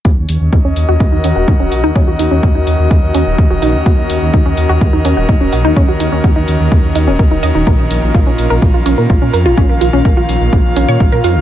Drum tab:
HH |-o-o-o-o|-o-o-o-o|-o-o-o-o|-o-o-o-o|
BD |o-o-o-o-|o-o-o-o-|o-o-o-o-|o-o-o-o-|

HH |-o-o-o-o|-o-o-o-o|
BD |o-o-o-o-|o-o-o-o-|